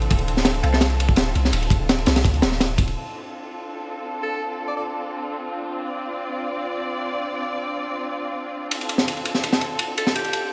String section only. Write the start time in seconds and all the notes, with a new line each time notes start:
Already playing: C4 D4 F4 A4
2.97 C4 D4 F4 A4
5.84 D5
8.72 A4